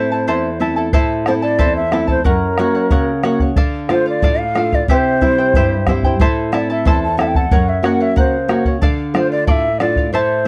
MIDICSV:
0, 0, Header, 1, 5, 480
1, 0, Start_track
1, 0, Key_signature, 0, "minor"
1, 0, Tempo, 657174
1, 681, Time_signature, 2, 2, 24, 8
1, 7652, End_track
2, 0, Start_track
2, 0, Title_t, "Quena"
2, 0, Program_c, 0, 77
2, 0, Note_on_c, 0, 72, 70
2, 442, Note_off_c, 0, 72, 0
2, 931, Note_on_c, 0, 72, 76
2, 975, Note_off_c, 0, 72, 0
2, 1040, Note_on_c, 0, 74, 86
2, 1266, Note_off_c, 0, 74, 0
2, 1287, Note_on_c, 0, 76, 83
2, 1510, Note_off_c, 0, 76, 0
2, 1536, Note_on_c, 0, 72, 78
2, 1643, Note_off_c, 0, 72, 0
2, 1655, Note_on_c, 0, 70, 76
2, 2344, Note_off_c, 0, 70, 0
2, 2850, Note_on_c, 0, 72, 77
2, 2962, Note_off_c, 0, 72, 0
2, 2986, Note_on_c, 0, 74, 88
2, 3207, Note_on_c, 0, 77, 87
2, 3218, Note_off_c, 0, 74, 0
2, 3466, Note_on_c, 0, 74, 80
2, 3477, Note_off_c, 0, 77, 0
2, 3579, Note_off_c, 0, 74, 0
2, 3585, Note_on_c, 0, 72, 79
2, 4269, Note_off_c, 0, 72, 0
2, 4775, Note_on_c, 0, 74, 76
2, 4885, Note_off_c, 0, 74, 0
2, 4902, Note_on_c, 0, 76, 84
2, 5008, Note_off_c, 0, 76, 0
2, 5024, Note_on_c, 0, 81, 89
2, 5130, Note_off_c, 0, 81, 0
2, 5137, Note_on_c, 0, 81, 86
2, 5245, Note_off_c, 0, 81, 0
2, 5258, Note_on_c, 0, 79, 82
2, 5282, Note_on_c, 0, 76, 69
2, 5293, Note_off_c, 0, 79, 0
2, 5311, Note_on_c, 0, 79, 84
2, 5322, Note_off_c, 0, 76, 0
2, 5372, Note_on_c, 0, 78, 80
2, 5383, Note_off_c, 0, 79, 0
2, 5614, Note_on_c, 0, 76, 77
2, 5625, Note_off_c, 0, 78, 0
2, 5734, Note_on_c, 0, 78, 80
2, 5745, Note_off_c, 0, 76, 0
2, 5855, Note_on_c, 0, 76, 83
2, 5866, Note_off_c, 0, 78, 0
2, 5972, Note_off_c, 0, 76, 0
2, 5978, Note_on_c, 0, 72, 66
2, 6308, Note_off_c, 0, 72, 0
2, 6693, Note_on_c, 0, 72, 76
2, 6799, Note_off_c, 0, 72, 0
2, 6803, Note_on_c, 0, 74, 85
2, 6915, Note_off_c, 0, 74, 0
2, 6919, Note_on_c, 0, 77, 83
2, 6947, Note_on_c, 0, 76, 90
2, 6954, Note_off_c, 0, 77, 0
2, 7144, Note_off_c, 0, 76, 0
2, 7160, Note_on_c, 0, 74, 79
2, 7383, Note_off_c, 0, 74, 0
2, 7405, Note_on_c, 0, 72, 72
2, 7652, Note_off_c, 0, 72, 0
2, 7652, End_track
3, 0, Start_track
3, 0, Title_t, "Charango"
3, 0, Program_c, 1, 24
3, 0, Note_on_c, 1, 64, 51
3, 0, Note_on_c, 1, 69, 49
3, 0, Note_on_c, 1, 76, 45
3, 0, Note_on_c, 1, 81, 56
3, 76, Note_off_c, 1, 81, 0
3, 80, Note_off_c, 1, 76, 0
3, 82, Note_off_c, 1, 64, 0
3, 82, Note_off_c, 1, 69, 0
3, 84, Note_on_c, 1, 81, 43
3, 90, Note_on_c, 1, 69, 46
3, 97, Note_on_c, 1, 64, 37
3, 195, Note_off_c, 1, 64, 0
3, 197, Note_off_c, 1, 69, 0
3, 202, Note_off_c, 1, 81, 0
3, 203, Note_on_c, 1, 76, 66
3, 204, Note_on_c, 1, 64, 70
3, 204, Note_on_c, 1, 72, 72
3, 205, Note_on_c, 1, 69, 74
3, 209, Note_on_c, 1, 81, 67
3, 433, Note_off_c, 1, 76, 0
3, 437, Note_off_c, 1, 64, 0
3, 439, Note_off_c, 1, 69, 0
3, 441, Note_off_c, 1, 81, 0
3, 442, Note_off_c, 1, 72, 0
3, 442, Note_on_c, 1, 76, 55
3, 446, Note_on_c, 1, 64, 55
3, 448, Note_on_c, 1, 69, 53
3, 450, Note_on_c, 1, 81, 58
3, 547, Note_off_c, 1, 81, 0
3, 555, Note_off_c, 1, 69, 0
3, 556, Note_on_c, 1, 81, 45
3, 557, Note_off_c, 1, 64, 0
3, 562, Note_off_c, 1, 76, 0
3, 564, Note_on_c, 1, 69, 48
3, 566, Note_on_c, 1, 64, 45
3, 675, Note_off_c, 1, 64, 0
3, 677, Note_off_c, 1, 69, 0
3, 679, Note_off_c, 1, 81, 0
3, 679, Note_on_c, 1, 72, 77
3, 682, Note_on_c, 1, 76, 81
3, 683, Note_on_c, 1, 64, 80
3, 686, Note_on_c, 1, 69, 82
3, 687, Note_on_c, 1, 81, 84
3, 916, Note_off_c, 1, 76, 0
3, 918, Note_off_c, 1, 64, 0
3, 921, Note_off_c, 1, 72, 0
3, 924, Note_on_c, 1, 76, 53
3, 925, Note_off_c, 1, 69, 0
3, 925, Note_off_c, 1, 81, 0
3, 927, Note_on_c, 1, 64, 51
3, 932, Note_on_c, 1, 69, 50
3, 935, Note_on_c, 1, 81, 59
3, 1030, Note_off_c, 1, 81, 0
3, 1037, Note_off_c, 1, 69, 0
3, 1039, Note_on_c, 1, 81, 50
3, 1042, Note_off_c, 1, 64, 0
3, 1044, Note_off_c, 1, 76, 0
3, 1046, Note_on_c, 1, 69, 43
3, 1051, Note_on_c, 1, 64, 40
3, 1150, Note_off_c, 1, 64, 0
3, 1155, Note_off_c, 1, 69, 0
3, 1155, Note_off_c, 1, 81, 0
3, 1158, Note_on_c, 1, 72, 70
3, 1159, Note_on_c, 1, 64, 79
3, 1159, Note_on_c, 1, 76, 76
3, 1164, Note_on_c, 1, 69, 74
3, 1164, Note_on_c, 1, 81, 81
3, 1392, Note_off_c, 1, 76, 0
3, 1394, Note_off_c, 1, 64, 0
3, 1397, Note_off_c, 1, 69, 0
3, 1401, Note_on_c, 1, 76, 49
3, 1402, Note_off_c, 1, 72, 0
3, 1403, Note_off_c, 1, 81, 0
3, 1403, Note_on_c, 1, 64, 53
3, 1406, Note_on_c, 1, 69, 53
3, 1411, Note_on_c, 1, 81, 55
3, 1506, Note_off_c, 1, 81, 0
3, 1513, Note_off_c, 1, 69, 0
3, 1515, Note_on_c, 1, 81, 49
3, 1518, Note_off_c, 1, 64, 0
3, 1521, Note_on_c, 1, 69, 45
3, 1523, Note_off_c, 1, 76, 0
3, 1526, Note_on_c, 1, 64, 39
3, 1636, Note_off_c, 1, 64, 0
3, 1639, Note_on_c, 1, 70, 68
3, 1641, Note_off_c, 1, 81, 0
3, 1644, Note_off_c, 1, 69, 0
3, 1644, Note_on_c, 1, 73, 66
3, 1647, Note_on_c, 1, 78, 77
3, 1877, Note_off_c, 1, 70, 0
3, 1880, Note_off_c, 1, 73, 0
3, 1886, Note_on_c, 1, 70, 49
3, 1887, Note_off_c, 1, 78, 0
3, 1889, Note_on_c, 1, 73, 56
3, 1899, Note_on_c, 1, 78, 60
3, 1998, Note_off_c, 1, 78, 0
3, 2007, Note_off_c, 1, 70, 0
3, 2007, Note_off_c, 1, 73, 0
3, 2007, Note_on_c, 1, 78, 50
3, 2015, Note_on_c, 1, 73, 41
3, 2119, Note_off_c, 1, 73, 0
3, 2122, Note_on_c, 1, 70, 74
3, 2124, Note_off_c, 1, 78, 0
3, 2128, Note_on_c, 1, 73, 69
3, 2133, Note_on_c, 1, 78, 78
3, 2355, Note_off_c, 1, 70, 0
3, 2361, Note_off_c, 1, 73, 0
3, 2362, Note_off_c, 1, 78, 0
3, 2364, Note_on_c, 1, 70, 56
3, 2370, Note_on_c, 1, 73, 63
3, 2371, Note_on_c, 1, 78, 67
3, 2477, Note_off_c, 1, 78, 0
3, 2486, Note_off_c, 1, 70, 0
3, 2486, Note_on_c, 1, 78, 48
3, 2489, Note_off_c, 1, 73, 0
3, 2498, Note_on_c, 1, 73, 44
3, 2603, Note_on_c, 1, 69, 83
3, 2608, Note_off_c, 1, 78, 0
3, 2610, Note_on_c, 1, 74, 81
3, 2611, Note_on_c, 1, 77, 87
3, 2614, Note_off_c, 1, 73, 0
3, 2835, Note_off_c, 1, 69, 0
3, 2840, Note_off_c, 1, 74, 0
3, 2844, Note_on_c, 1, 69, 53
3, 2846, Note_off_c, 1, 77, 0
3, 2849, Note_on_c, 1, 74, 53
3, 2855, Note_on_c, 1, 77, 55
3, 2956, Note_off_c, 1, 77, 0
3, 2964, Note_on_c, 1, 77, 52
3, 2967, Note_off_c, 1, 69, 0
3, 2967, Note_off_c, 1, 74, 0
3, 2975, Note_on_c, 1, 74, 38
3, 3085, Note_off_c, 1, 74, 0
3, 3087, Note_off_c, 1, 77, 0
3, 3088, Note_on_c, 1, 69, 72
3, 3094, Note_on_c, 1, 74, 81
3, 3097, Note_on_c, 1, 77, 75
3, 3325, Note_off_c, 1, 69, 0
3, 3327, Note_off_c, 1, 74, 0
3, 3334, Note_off_c, 1, 77, 0
3, 3334, Note_on_c, 1, 69, 48
3, 3336, Note_on_c, 1, 74, 54
3, 3342, Note_on_c, 1, 77, 58
3, 3442, Note_off_c, 1, 77, 0
3, 3451, Note_on_c, 1, 77, 49
3, 3452, Note_off_c, 1, 69, 0
3, 3453, Note_off_c, 1, 74, 0
3, 3462, Note_on_c, 1, 74, 38
3, 3571, Note_off_c, 1, 77, 0
3, 3574, Note_on_c, 1, 67, 76
3, 3576, Note_off_c, 1, 74, 0
3, 3577, Note_on_c, 1, 64, 72
3, 3579, Note_on_c, 1, 76, 78
3, 3582, Note_on_c, 1, 72, 75
3, 3585, Note_on_c, 1, 79, 82
3, 3802, Note_off_c, 1, 76, 0
3, 3803, Note_off_c, 1, 64, 0
3, 3808, Note_off_c, 1, 72, 0
3, 3811, Note_on_c, 1, 76, 55
3, 3812, Note_on_c, 1, 64, 54
3, 3813, Note_off_c, 1, 67, 0
3, 3813, Note_off_c, 1, 79, 0
3, 3817, Note_on_c, 1, 72, 56
3, 3821, Note_on_c, 1, 79, 52
3, 3923, Note_off_c, 1, 79, 0
3, 3931, Note_off_c, 1, 64, 0
3, 3931, Note_off_c, 1, 72, 0
3, 3931, Note_off_c, 1, 76, 0
3, 3932, Note_on_c, 1, 79, 50
3, 3939, Note_on_c, 1, 72, 47
3, 3941, Note_on_c, 1, 64, 43
3, 4051, Note_off_c, 1, 79, 0
3, 4055, Note_off_c, 1, 72, 0
3, 4056, Note_off_c, 1, 64, 0
3, 4060, Note_on_c, 1, 67, 61
3, 4063, Note_on_c, 1, 72, 78
3, 4063, Note_on_c, 1, 76, 80
3, 4064, Note_on_c, 1, 64, 74
3, 4066, Note_on_c, 1, 79, 77
3, 4289, Note_off_c, 1, 76, 0
3, 4291, Note_off_c, 1, 64, 0
3, 4295, Note_off_c, 1, 67, 0
3, 4295, Note_off_c, 1, 72, 0
3, 4295, Note_off_c, 1, 79, 0
3, 4298, Note_on_c, 1, 76, 60
3, 4299, Note_on_c, 1, 64, 57
3, 4303, Note_on_c, 1, 72, 65
3, 4303, Note_on_c, 1, 79, 65
3, 4406, Note_off_c, 1, 79, 0
3, 4413, Note_off_c, 1, 72, 0
3, 4414, Note_off_c, 1, 76, 0
3, 4415, Note_off_c, 1, 64, 0
3, 4415, Note_on_c, 1, 79, 53
3, 4421, Note_on_c, 1, 72, 51
3, 4427, Note_on_c, 1, 64, 44
3, 4526, Note_off_c, 1, 72, 0
3, 4529, Note_off_c, 1, 64, 0
3, 4533, Note_off_c, 1, 79, 0
3, 4534, Note_on_c, 1, 76, 79
3, 4535, Note_on_c, 1, 72, 76
3, 4538, Note_on_c, 1, 64, 85
3, 4540, Note_on_c, 1, 69, 77
3, 4541, Note_on_c, 1, 81, 81
3, 4756, Note_off_c, 1, 76, 0
3, 4762, Note_off_c, 1, 64, 0
3, 4764, Note_on_c, 1, 76, 50
3, 4765, Note_off_c, 1, 69, 0
3, 4768, Note_off_c, 1, 81, 0
3, 4771, Note_on_c, 1, 64, 60
3, 4773, Note_off_c, 1, 72, 0
3, 4774, Note_on_c, 1, 69, 54
3, 4777, Note_on_c, 1, 81, 64
3, 4883, Note_off_c, 1, 81, 0
3, 4888, Note_off_c, 1, 76, 0
3, 4890, Note_off_c, 1, 69, 0
3, 4891, Note_off_c, 1, 64, 0
3, 4892, Note_on_c, 1, 81, 54
3, 4899, Note_on_c, 1, 69, 46
3, 4903, Note_on_c, 1, 64, 41
3, 5010, Note_off_c, 1, 64, 0
3, 5011, Note_off_c, 1, 81, 0
3, 5012, Note_off_c, 1, 69, 0
3, 5012, Note_on_c, 1, 72, 67
3, 5017, Note_on_c, 1, 76, 74
3, 5019, Note_on_c, 1, 64, 75
3, 5021, Note_on_c, 1, 69, 75
3, 5021, Note_on_c, 1, 81, 82
3, 5246, Note_off_c, 1, 76, 0
3, 5248, Note_off_c, 1, 64, 0
3, 5249, Note_off_c, 1, 69, 0
3, 5251, Note_off_c, 1, 72, 0
3, 5254, Note_on_c, 1, 76, 51
3, 5255, Note_off_c, 1, 81, 0
3, 5257, Note_on_c, 1, 64, 54
3, 5258, Note_on_c, 1, 69, 56
3, 5264, Note_on_c, 1, 81, 54
3, 5368, Note_off_c, 1, 81, 0
3, 5372, Note_off_c, 1, 76, 0
3, 5373, Note_off_c, 1, 64, 0
3, 5374, Note_off_c, 1, 69, 0
3, 5377, Note_on_c, 1, 81, 49
3, 5382, Note_on_c, 1, 69, 45
3, 5388, Note_on_c, 1, 64, 38
3, 5489, Note_off_c, 1, 64, 0
3, 5492, Note_on_c, 1, 70, 73
3, 5492, Note_on_c, 1, 73, 73
3, 5493, Note_off_c, 1, 81, 0
3, 5496, Note_off_c, 1, 69, 0
3, 5498, Note_on_c, 1, 78, 71
3, 5717, Note_off_c, 1, 70, 0
3, 5723, Note_off_c, 1, 73, 0
3, 5726, Note_on_c, 1, 70, 53
3, 5727, Note_off_c, 1, 78, 0
3, 5732, Note_on_c, 1, 73, 57
3, 5736, Note_on_c, 1, 78, 62
3, 5837, Note_off_c, 1, 78, 0
3, 5845, Note_off_c, 1, 73, 0
3, 5846, Note_on_c, 1, 78, 50
3, 5847, Note_off_c, 1, 70, 0
3, 5854, Note_on_c, 1, 73, 42
3, 5961, Note_off_c, 1, 78, 0
3, 5961, Note_on_c, 1, 70, 69
3, 5970, Note_on_c, 1, 78, 76
3, 5971, Note_off_c, 1, 73, 0
3, 6193, Note_off_c, 1, 70, 0
3, 6201, Note_on_c, 1, 70, 47
3, 6206, Note_off_c, 1, 78, 0
3, 6208, Note_on_c, 1, 73, 51
3, 6214, Note_on_c, 1, 78, 53
3, 6315, Note_off_c, 1, 78, 0
3, 6324, Note_off_c, 1, 70, 0
3, 6324, Note_on_c, 1, 78, 55
3, 6328, Note_off_c, 1, 73, 0
3, 6336, Note_on_c, 1, 73, 43
3, 6439, Note_on_c, 1, 69, 79
3, 6445, Note_off_c, 1, 78, 0
3, 6446, Note_on_c, 1, 74, 81
3, 6448, Note_on_c, 1, 77, 88
3, 6451, Note_off_c, 1, 73, 0
3, 6675, Note_off_c, 1, 69, 0
3, 6680, Note_off_c, 1, 74, 0
3, 6684, Note_off_c, 1, 77, 0
3, 6684, Note_on_c, 1, 69, 54
3, 6689, Note_on_c, 1, 74, 58
3, 6693, Note_on_c, 1, 77, 59
3, 6797, Note_off_c, 1, 77, 0
3, 6804, Note_off_c, 1, 69, 0
3, 6806, Note_on_c, 1, 77, 50
3, 6807, Note_off_c, 1, 74, 0
3, 6817, Note_on_c, 1, 74, 43
3, 6915, Note_off_c, 1, 74, 0
3, 6920, Note_on_c, 1, 69, 74
3, 6921, Note_off_c, 1, 77, 0
3, 6924, Note_on_c, 1, 74, 78
3, 7150, Note_off_c, 1, 69, 0
3, 7153, Note_off_c, 1, 74, 0
3, 7159, Note_on_c, 1, 69, 49
3, 7162, Note_on_c, 1, 74, 52
3, 7169, Note_on_c, 1, 77, 52
3, 7276, Note_off_c, 1, 77, 0
3, 7281, Note_off_c, 1, 69, 0
3, 7282, Note_off_c, 1, 74, 0
3, 7285, Note_on_c, 1, 77, 52
3, 7294, Note_on_c, 1, 74, 39
3, 7402, Note_off_c, 1, 77, 0
3, 7403, Note_on_c, 1, 72, 64
3, 7405, Note_on_c, 1, 76, 68
3, 7408, Note_off_c, 1, 74, 0
3, 7408, Note_on_c, 1, 64, 71
3, 7411, Note_on_c, 1, 69, 74
3, 7412, Note_on_c, 1, 81, 81
3, 7626, Note_off_c, 1, 76, 0
3, 7631, Note_off_c, 1, 64, 0
3, 7632, Note_off_c, 1, 69, 0
3, 7637, Note_off_c, 1, 81, 0
3, 7641, Note_off_c, 1, 72, 0
3, 7652, End_track
4, 0, Start_track
4, 0, Title_t, "Nylon-string guitar"
4, 0, Program_c, 2, 24
4, 0, Note_on_c, 2, 45, 57
4, 0, Note_on_c, 2, 57, 44
4, 0, Note_on_c, 2, 60, 43
4, 0, Note_on_c, 2, 64, 52
4, 183, Note_off_c, 2, 45, 0
4, 201, Note_on_c, 2, 40, 57
4, 344, Note_off_c, 2, 57, 0
4, 344, Note_off_c, 2, 60, 0
4, 345, Note_off_c, 2, 64, 0
4, 436, Note_on_c, 2, 57, 40
4, 440, Note_on_c, 2, 60, 38
4, 443, Note_on_c, 2, 64, 49
4, 631, Note_off_c, 2, 57, 0
4, 632, Note_off_c, 2, 60, 0
4, 635, Note_off_c, 2, 64, 0
4, 668, Note_off_c, 2, 40, 0
4, 693, Note_on_c, 2, 45, 58
4, 931, Note_on_c, 2, 57, 47
4, 933, Note_on_c, 2, 60, 44
4, 937, Note_on_c, 2, 64, 53
4, 1155, Note_off_c, 2, 45, 0
4, 1173, Note_on_c, 2, 40, 57
4, 1314, Note_off_c, 2, 57, 0
4, 1314, Note_off_c, 2, 60, 0
4, 1317, Note_off_c, 2, 64, 0
4, 1400, Note_on_c, 2, 57, 45
4, 1405, Note_on_c, 2, 60, 44
4, 1411, Note_on_c, 2, 64, 48
4, 1595, Note_off_c, 2, 57, 0
4, 1598, Note_off_c, 2, 60, 0
4, 1601, Note_off_c, 2, 64, 0
4, 1636, Note_off_c, 2, 40, 0
4, 1649, Note_on_c, 2, 42, 62
4, 1888, Note_on_c, 2, 58, 49
4, 1891, Note_on_c, 2, 61, 44
4, 1895, Note_on_c, 2, 66, 55
4, 2115, Note_off_c, 2, 42, 0
4, 2125, Note_on_c, 2, 49, 60
4, 2273, Note_off_c, 2, 58, 0
4, 2273, Note_off_c, 2, 61, 0
4, 2277, Note_off_c, 2, 66, 0
4, 2360, Note_on_c, 2, 58, 45
4, 2364, Note_on_c, 2, 61, 41
4, 2365, Note_on_c, 2, 66, 53
4, 2556, Note_off_c, 2, 58, 0
4, 2558, Note_off_c, 2, 61, 0
4, 2559, Note_off_c, 2, 66, 0
4, 2593, Note_off_c, 2, 49, 0
4, 2605, Note_on_c, 2, 50, 59
4, 2841, Note_on_c, 2, 57, 46
4, 2846, Note_on_c, 2, 62, 44
4, 2847, Note_on_c, 2, 65, 55
4, 3074, Note_off_c, 2, 50, 0
4, 3085, Note_on_c, 2, 45, 63
4, 3229, Note_off_c, 2, 57, 0
4, 3232, Note_off_c, 2, 65, 0
4, 3233, Note_off_c, 2, 62, 0
4, 3323, Note_on_c, 2, 57, 46
4, 3325, Note_on_c, 2, 62, 40
4, 3329, Note_on_c, 2, 65, 53
4, 3518, Note_off_c, 2, 57, 0
4, 3518, Note_off_c, 2, 62, 0
4, 3521, Note_off_c, 2, 65, 0
4, 3554, Note_off_c, 2, 45, 0
4, 3567, Note_on_c, 2, 48, 62
4, 3807, Note_on_c, 2, 55, 47
4, 3810, Note_on_c, 2, 60, 45
4, 3813, Note_on_c, 2, 64, 51
4, 4035, Note_off_c, 2, 48, 0
4, 4055, Note_on_c, 2, 43, 60
4, 4193, Note_off_c, 2, 55, 0
4, 4194, Note_off_c, 2, 60, 0
4, 4196, Note_off_c, 2, 64, 0
4, 4284, Note_on_c, 2, 55, 46
4, 4288, Note_on_c, 2, 60, 42
4, 4291, Note_on_c, 2, 64, 50
4, 4479, Note_off_c, 2, 55, 0
4, 4480, Note_off_c, 2, 60, 0
4, 4483, Note_off_c, 2, 64, 0
4, 4519, Note_off_c, 2, 43, 0
4, 4526, Note_on_c, 2, 45, 58
4, 4763, Note_on_c, 2, 57, 47
4, 4767, Note_on_c, 2, 60, 43
4, 4773, Note_on_c, 2, 64, 56
4, 4993, Note_off_c, 2, 45, 0
4, 5006, Note_on_c, 2, 40, 63
4, 5150, Note_off_c, 2, 57, 0
4, 5151, Note_off_c, 2, 60, 0
4, 5156, Note_off_c, 2, 64, 0
4, 5239, Note_on_c, 2, 57, 46
4, 5244, Note_on_c, 2, 60, 41
4, 5244, Note_on_c, 2, 64, 50
4, 5436, Note_off_c, 2, 57, 0
4, 5437, Note_off_c, 2, 60, 0
4, 5438, Note_off_c, 2, 64, 0
4, 5473, Note_off_c, 2, 40, 0
4, 5488, Note_on_c, 2, 42, 62
4, 5716, Note_on_c, 2, 58, 48
4, 5722, Note_on_c, 2, 61, 47
4, 5722, Note_on_c, 2, 66, 53
4, 5953, Note_off_c, 2, 42, 0
4, 5960, Note_on_c, 2, 49, 58
4, 6105, Note_off_c, 2, 58, 0
4, 6106, Note_off_c, 2, 61, 0
4, 6108, Note_off_c, 2, 66, 0
4, 6196, Note_on_c, 2, 58, 50
4, 6199, Note_on_c, 2, 61, 43
4, 6206, Note_on_c, 2, 66, 54
4, 6392, Note_off_c, 2, 58, 0
4, 6394, Note_off_c, 2, 61, 0
4, 6398, Note_off_c, 2, 66, 0
4, 6428, Note_off_c, 2, 49, 0
4, 6441, Note_on_c, 2, 50, 61
4, 6676, Note_on_c, 2, 57, 52
4, 6680, Note_on_c, 2, 62, 46
4, 6684, Note_on_c, 2, 65, 54
4, 6907, Note_off_c, 2, 50, 0
4, 6920, Note_on_c, 2, 45, 62
4, 7062, Note_off_c, 2, 57, 0
4, 7065, Note_off_c, 2, 62, 0
4, 7067, Note_off_c, 2, 65, 0
4, 7157, Note_on_c, 2, 57, 47
4, 7161, Note_on_c, 2, 62, 44
4, 7166, Note_on_c, 2, 65, 50
4, 7350, Note_off_c, 2, 57, 0
4, 7353, Note_off_c, 2, 62, 0
4, 7356, Note_off_c, 2, 65, 0
4, 7385, Note_off_c, 2, 45, 0
4, 7397, Note_on_c, 2, 45, 62
4, 7652, Note_off_c, 2, 45, 0
4, 7652, End_track
5, 0, Start_track
5, 0, Title_t, "Bombo"
5, 678, Note_on_c, 9, 43, 71
5, 751, Note_off_c, 9, 43, 0
5, 920, Note_on_c, 9, 37, 51
5, 993, Note_off_c, 9, 37, 0
5, 1162, Note_on_c, 9, 43, 60
5, 1235, Note_off_c, 9, 43, 0
5, 1403, Note_on_c, 9, 37, 48
5, 1476, Note_off_c, 9, 37, 0
5, 1519, Note_on_c, 9, 43, 48
5, 1592, Note_off_c, 9, 43, 0
5, 1643, Note_on_c, 9, 43, 63
5, 1716, Note_off_c, 9, 43, 0
5, 1882, Note_on_c, 9, 37, 49
5, 1955, Note_off_c, 9, 37, 0
5, 2122, Note_on_c, 9, 43, 67
5, 2195, Note_off_c, 9, 43, 0
5, 2363, Note_on_c, 9, 37, 52
5, 2436, Note_off_c, 9, 37, 0
5, 2482, Note_on_c, 9, 43, 54
5, 2555, Note_off_c, 9, 43, 0
5, 2601, Note_on_c, 9, 43, 74
5, 2674, Note_off_c, 9, 43, 0
5, 2842, Note_on_c, 9, 37, 54
5, 2915, Note_off_c, 9, 37, 0
5, 3085, Note_on_c, 9, 43, 63
5, 3158, Note_off_c, 9, 43, 0
5, 3327, Note_on_c, 9, 37, 48
5, 3400, Note_off_c, 9, 37, 0
5, 3451, Note_on_c, 9, 43, 48
5, 3524, Note_off_c, 9, 43, 0
5, 3566, Note_on_c, 9, 43, 62
5, 3639, Note_off_c, 9, 43, 0
5, 3808, Note_on_c, 9, 43, 48
5, 3881, Note_off_c, 9, 43, 0
5, 4045, Note_on_c, 9, 43, 65
5, 4118, Note_off_c, 9, 43, 0
5, 4285, Note_on_c, 9, 37, 52
5, 4285, Note_on_c, 9, 43, 44
5, 4358, Note_off_c, 9, 37, 0
5, 4358, Note_off_c, 9, 43, 0
5, 4404, Note_on_c, 9, 43, 54
5, 4477, Note_off_c, 9, 43, 0
5, 4526, Note_on_c, 9, 43, 73
5, 4599, Note_off_c, 9, 43, 0
5, 4768, Note_on_c, 9, 37, 54
5, 4841, Note_off_c, 9, 37, 0
5, 5010, Note_on_c, 9, 43, 81
5, 5083, Note_off_c, 9, 43, 0
5, 5251, Note_on_c, 9, 37, 61
5, 5324, Note_off_c, 9, 37, 0
5, 5366, Note_on_c, 9, 43, 60
5, 5439, Note_off_c, 9, 43, 0
5, 5487, Note_on_c, 9, 43, 87
5, 5561, Note_off_c, 9, 43, 0
5, 5727, Note_on_c, 9, 37, 57
5, 5800, Note_off_c, 9, 37, 0
5, 5965, Note_on_c, 9, 43, 73
5, 6038, Note_off_c, 9, 43, 0
5, 6204, Note_on_c, 9, 37, 53
5, 6277, Note_off_c, 9, 37, 0
5, 6318, Note_on_c, 9, 43, 52
5, 6391, Note_off_c, 9, 43, 0
5, 6442, Note_on_c, 9, 43, 75
5, 6516, Note_off_c, 9, 43, 0
5, 6681, Note_on_c, 9, 37, 51
5, 6754, Note_off_c, 9, 37, 0
5, 6919, Note_on_c, 9, 43, 69
5, 6992, Note_off_c, 9, 43, 0
5, 7160, Note_on_c, 9, 37, 51
5, 7233, Note_off_c, 9, 37, 0
5, 7275, Note_on_c, 9, 43, 50
5, 7348, Note_off_c, 9, 43, 0
5, 7652, End_track
0, 0, End_of_file